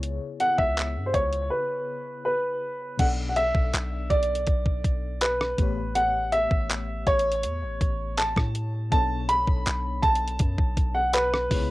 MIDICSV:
0, 0, Header, 1, 5, 480
1, 0, Start_track
1, 0, Key_signature, 2, "minor"
1, 0, Tempo, 740741
1, 19, Time_signature, 4, 2, 24, 8
1, 7587, End_track
2, 0, Start_track
2, 0, Title_t, "Grand piano"
2, 0, Program_c, 0, 0
2, 262, Note_on_c, 0, 78, 103
2, 372, Note_off_c, 0, 78, 0
2, 377, Note_on_c, 0, 76, 92
2, 688, Note_on_c, 0, 72, 62
2, 702, Note_off_c, 0, 76, 0
2, 736, Note_off_c, 0, 72, 0
2, 737, Note_on_c, 0, 73, 84
2, 961, Note_off_c, 0, 73, 0
2, 974, Note_on_c, 0, 71, 69
2, 1448, Note_off_c, 0, 71, 0
2, 1458, Note_on_c, 0, 71, 76
2, 1913, Note_off_c, 0, 71, 0
2, 1940, Note_on_c, 0, 78, 86
2, 1984, Note_off_c, 0, 78, 0
2, 2133, Note_on_c, 0, 78, 64
2, 2179, Note_off_c, 0, 78, 0
2, 2180, Note_on_c, 0, 76, 100
2, 2656, Note_on_c, 0, 74, 102
2, 2674, Note_off_c, 0, 76, 0
2, 3378, Note_on_c, 0, 71, 81
2, 3400, Note_off_c, 0, 74, 0
2, 3858, Note_on_c, 0, 78, 98
2, 3873, Note_off_c, 0, 71, 0
2, 4082, Note_off_c, 0, 78, 0
2, 4097, Note_on_c, 0, 76, 98
2, 4552, Note_off_c, 0, 76, 0
2, 4580, Note_on_c, 0, 73, 106
2, 5298, Note_on_c, 0, 81, 98
2, 5321, Note_off_c, 0, 73, 0
2, 5769, Note_off_c, 0, 81, 0
2, 5778, Note_on_c, 0, 81, 104
2, 6018, Note_on_c, 0, 83, 109
2, 6026, Note_off_c, 0, 81, 0
2, 6496, Note_on_c, 0, 81, 107
2, 6513, Note_off_c, 0, 83, 0
2, 7093, Note_on_c, 0, 78, 90
2, 7116, Note_off_c, 0, 81, 0
2, 7216, Note_on_c, 0, 71, 89
2, 7220, Note_off_c, 0, 78, 0
2, 7587, Note_off_c, 0, 71, 0
2, 7587, End_track
3, 0, Start_track
3, 0, Title_t, "FM electric piano"
3, 0, Program_c, 1, 5
3, 0, Control_c, 1, 64, 127
3, 0, Note_on_c, 1, 49, 72
3, 0, Note_on_c, 1, 59, 69
3, 0, Note_on_c, 1, 64, 72
3, 0, Note_on_c, 1, 68, 69
3, 0, Note_on_c, 1, 73, 83
3, 1668, Note_off_c, 1, 49, 0
3, 1673, Note_off_c, 1, 59, 0
3, 1681, Note_off_c, 1, 68, 0
3, 1686, Note_off_c, 1, 73, 0
3, 1698, Note_off_c, 1, 64, 0
3, 1927, Note_on_c, 1, 47, 62
3, 1936, Note_on_c, 1, 59, 57
3, 1945, Note_on_c, 1, 62, 59
3, 1948, Control_c, 1, 64, 0
3, 1953, Note_on_c, 1, 69, 59
3, 1964, Note_on_c, 1, 74, 66
3, 2066, Control_c, 1, 64, 127
3, 3587, Note_off_c, 1, 47, 0
3, 3592, Note_off_c, 1, 59, 0
3, 3596, Note_off_c, 1, 62, 0
3, 3600, Note_off_c, 1, 69, 0
3, 3605, Note_off_c, 1, 74, 0
3, 3609, Note_on_c, 1, 45, 65
3, 3617, Note_on_c, 1, 57, 62
3, 3626, Note_on_c, 1, 59, 59
3, 3627, Control_c, 1, 64, 0
3, 3634, Note_on_c, 1, 67, 60
3, 3643, Note_on_c, 1, 73, 75
3, 3755, Control_c, 1, 64, 127
3, 5508, Note_off_c, 1, 45, 0
3, 5512, Note_off_c, 1, 57, 0
3, 5517, Note_off_c, 1, 59, 0
3, 5521, Note_off_c, 1, 67, 0
3, 5525, Note_off_c, 1, 73, 0
3, 5769, Note_on_c, 1, 47, 66
3, 5778, Note_on_c, 1, 59, 60
3, 5787, Note_on_c, 1, 62, 60
3, 5788, Control_c, 1, 64, 0
3, 5795, Note_on_c, 1, 69, 59
3, 5804, Note_on_c, 1, 73, 71
3, 5890, Control_c, 1, 64, 127
3, 7428, Note_off_c, 1, 47, 0
3, 7433, Note_off_c, 1, 59, 0
3, 7437, Note_off_c, 1, 62, 0
3, 7441, Note_off_c, 1, 69, 0
3, 7446, Note_off_c, 1, 73, 0
3, 7447, Note_on_c, 1, 49, 64
3, 7456, Note_on_c, 1, 59, 64
3, 7464, Note_on_c, 1, 64, 59
3, 7469, Control_c, 1, 64, 0
3, 7473, Note_on_c, 1, 68, 63
3, 7481, Note_on_c, 1, 73, 74
3, 7577, Control_c, 1, 64, 127
3, 7587, Note_off_c, 1, 49, 0
3, 7587, Note_off_c, 1, 59, 0
3, 7587, Note_off_c, 1, 64, 0
3, 7587, Note_off_c, 1, 68, 0
3, 7587, Note_off_c, 1, 73, 0
3, 7587, End_track
4, 0, Start_track
4, 0, Title_t, "808-style bass"
4, 0, Program_c, 2, 38
4, 0, Note_on_c, 2, 37, 103
4, 126, Note_off_c, 2, 37, 0
4, 380, Note_on_c, 2, 37, 101
4, 625, Note_on_c, 2, 43, 93
4, 634, Note_off_c, 2, 37, 0
4, 736, Note_off_c, 2, 43, 0
4, 742, Note_on_c, 2, 37, 103
4, 971, Note_off_c, 2, 37, 0
4, 1940, Note_on_c, 2, 35, 109
4, 2285, Note_off_c, 2, 35, 0
4, 2299, Note_on_c, 2, 35, 99
4, 2415, Note_off_c, 2, 35, 0
4, 2423, Note_on_c, 2, 35, 102
4, 2652, Note_off_c, 2, 35, 0
4, 2660, Note_on_c, 2, 35, 93
4, 2890, Note_off_c, 2, 35, 0
4, 2899, Note_on_c, 2, 35, 105
4, 3593, Note_off_c, 2, 35, 0
4, 3620, Note_on_c, 2, 33, 102
4, 4196, Note_off_c, 2, 33, 0
4, 4220, Note_on_c, 2, 33, 96
4, 4566, Note_off_c, 2, 33, 0
4, 4581, Note_on_c, 2, 33, 104
4, 4823, Note_on_c, 2, 40, 93
4, 4833, Note_off_c, 2, 33, 0
4, 4944, Note_on_c, 2, 33, 97
4, 4954, Note_off_c, 2, 40, 0
4, 5056, Note_off_c, 2, 33, 0
4, 5062, Note_on_c, 2, 33, 99
4, 5406, Note_off_c, 2, 33, 0
4, 5421, Note_on_c, 2, 45, 102
4, 5766, Note_off_c, 2, 45, 0
4, 5782, Note_on_c, 2, 35, 112
4, 6126, Note_off_c, 2, 35, 0
4, 6142, Note_on_c, 2, 35, 99
4, 6256, Note_off_c, 2, 35, 0
4, 6265, Note_on_c, 2, 35, 104
4, 6493, Note_off_c, 2, 35, 0
4, 6500, Note_on_c, 2, 35, 94
4, 6730, Note_off_c, 2, 35, 0
4, 6740, Note_on_c, 2, 42, 106
4, 6855, Note_off_c, 2, 42, 0
4, 6860, Note_on_c, 2, 35, 102
4, 6975, Note_off_c, 2, 35, 0
4, 6981, Note_on_c, 2, 35, 98
4, 7441, Note_off_c, 2, 35, 0
4, 7460, Note_on_c, 2, 37, 108
4, 7587, Note_off_c, 2, 37, 0
4, 7587, End_track
5, 0, Start_track
5, 0, Title_t, "Drums"
5, 20, Note_on_c, 9, 42, 72
5, 84, Note_off_c, 9, 42, 0
5, 259, Note_on_c, 9, 42, 63
5, 324, Note_off_c, 9, 42, 0
5, 379, Note_on_c, 9, 36, 92
5, 444, Note_off_c, 9, 36, 0
5, 499, Note_on_c, 9, 42, 61
5, 507, Note_on_c, 9, 39, 94
5, 564, Note_off_c, 9, 42, 0
5, 572, Note_off_c, 9, 39, 0
5, 739, Note_on_c, 9, 36, 86
5, 739, Note_on_c, 9, 42, 51
5, 804, Note_off_c, 9, 36, 0
5, 804, Note_off_c, 9, 42, 0
5, 859, Note_on_c, 9, 42, 50
5, 924, Note_off_c, 9, 42, 0
5, 1939, Note_on_c, 9, 36, 113
5, 1939, Note_on_c, 9, 42, 67
5, 1939, Note_on_c, 9, 49, 90
5, 2003, Note_off_c, 9, 42, 0
5, 2004, Note_off_c, 9, 36, 0
5, 2004, Note_off_c, 9, 49, 0
5, 2179, Note_on_c, 9, 42, 64
5, 2243, Note_off_c, 9, 42, 0
5, 2299, Note_on_c, 9, 36, 88
5, 2363, Note_off_c, 9, 36, 0
5, 2420, Note_on_c, 9, 42, 64
5, 2428, Note_on_c, 9, 39, 105
5, 2485, Note_off_c, 9, 42, 0
5, 2493, Note_off_c, 9, 39, 0
5, 2659, Note_on_c, 9, 36, 90
5, 2659, Note_on_c, 9, 42, 39
5, 2723, Note_off_c, 9, 36, 0
5, 2724, Note_off_c, 9, 42, 0
5, 2739, Note_on_c, 9, 42, 49
5, 2804, Note_off_c, 9, 42, 0
5, 2819, Note_on_c, 9, 42, 68
5, 2884, Note_off_c, 9, 42, 0
5, 2894, Note_on_c, 9, 42, 68
5, 2898, Note_on_c, 9, 36, 96
5, 2959, Note_off_c, 9, 42, 0
5, 2963, Note_off_c, 9, 36, 0
5, 3018, Note_on_c, 9, 36, 85
5, 3083, Note_off_c, 9, 36, 0
5, 3139, Note_on_c, 9, 36, 83
5, 3140, Note_on_c, 9, 42, 66
5, 3204, Note_off_c, 9, 36, 0
5, 3205, Note_off_c, 9, 42, 0
5, 3376, Note_on_c, 9, 42, 81
5, 3385, Note_on_c, 9, 39, 99
5, 3441, Note_off_c, 9, 42, 0
5, 3450, Note_off_c, 9, 39, 0
5, 3505, Note_on_c, 9, 37, 94
5, 3570, Note_off_c, 9, 37, 0
5, 3618, Note_on_c, 9, 36, 110
5, 3618, Note_on_c, 9, 42, 70
5, 3683, Note_off_c, 9, 36, 0
5, 3683, Note_off_c, 9, 42, 0
5, 3858, Note_on_c, 9, 42, 71
5, 3923, Note_off_c, 9, 42, 0
5, 4098, Note_on_c, 9, 42, 65
5, 4163, Note_off_c, 9, 42, 0
5, 4218, Note_on_c, 9, 36, 88
5, 4283, Note_off_c, 9, 36, 0
5, 4339, Note_on_c, 9, 42, 64
5, 4347, Note_on_c, 9, 39, 103
5, 4404, Note_off_c, 9, 42, 0
5, 4412, Note_off_c, 9, 39, 0
5, 4579, Note_on_c, 9, 36, 88
5, 4580, Note_on_c, 9, 42, 38
5, 4644, Note_off_c, 9, 36, 0
5, 4645, Note_off_c, 9, 42, 0
5, 4661, Note_on_c, 9, 42, 48
5, 4726, Note_off_c, 9, 42, 0
5, 4741, Note_on_c, 9, 42, 65
5, 4806, Note_off_c, 9, 42, 0
5, 4817, Note_on_c, 9, 42, 69
5, 4881, Note_off_c, 9, 42, 0
5, 5060, Note_on_c, 9, 36, 86
5, 5061, Note_on_c, 9, 42, 63
5, 5125, Note_off_c, 9, 36, 0
5, 5126, Note_off_c, 9, 42, 0
5, 5297, Note_on_c, 9, 42, 77
5, 5306, Note_on_c, 9, 39, 100
5, 5362, Note_off_c, 9, 42, 0
5, 5371, Note_off_c, 9, 39, 0
5, 5419, Note_on_c, 9, 36, 87
5, 5427, Note_on_c, 9, 37, 96
5, 5484, Note_off_c, 9, 36, 0
5, 5492, Note_off_c, 9, 37, 0
5, 5540, Note_on_c, 9, 42, 71
5, 5605, Note_off_c, 9, 42, 0
5, 5780, Note_on_c, 9, 36, 118
5, 5780, Note_on_c, 9, 42, 71
5, 5844, Note_off_c, 9, 42, 0
5, 5845, Note_off_c, 9, 36, 0
5, 6019, Note_on_c, 9, 42, 67
5, 6084, Note_off_c, 9, 42, 0
5, 6139, Note_on_c, 9, 36, 89
5, 6204, Note_off_c, 9, 36, 0
5, 6259, Note_on_c, 9, 42, 65
5, 6267, Note_on_c, 9, 39, 96
5, 6324, Note_off_c, 9, 42, 0
5, 6332, Note_off_c, 9, 39, 0
5, 6499, Note_on_c, 9, 36, 95
5, 6500, Note_on_c, 9, 42, 39
5, 6564, Note_off_c, 9, 36, 0
5, 6564, Note_off_c, 9, 42, 0
5, 6580, Note_on_c, 9, 42, 53
5, 6645, Note_off_c, 9, 42, 0
5, 6659, Note_on_c, 9, 42, 65
5, 6724, Note_off_c, 9, 42, 0
5, 6734, Note_on_c, 9, 42, 70
5, 6738, Note_on_c, 9, 36, 94
5, 6799, Note_off_c, 9, 42, 0
5, 6803, Note_off_c, 9, 36, 0
5, 6858, Note_on_c, 9, 36, 93
5, 6923, Note_off_c, 9, 36, 0
5, 6979, Note_on_c, 9, 36, 89
5, 6980, Note_on_c, 9, 42, 65
5, 7044, Note_off_c, 9, 36, 0
5, 7045, Note_off_c, 9, 42, 0
5, 7215, Note_on_c, 9, 42, 82
5, 7224, Note_on_c, 9, 39, 97
5, 7280, Note_off_c, 9, 42, 0
5, 7289, Note_off_c, 9, 39, 0
5, 7347, Note_on_c, 9, 37, 95
5, 7411, Note_off_c, 9, 37, 0
5, 7459, Note_on_c, 9, 36, 109
5, 7459, Note_on_c, 9, 46, 73
5, 7523, Note_off_c, 9, 36, 0
5, 7524, Note_off_c, 9, 46, 0
5, 7587, End_track
0, 0, End_of_file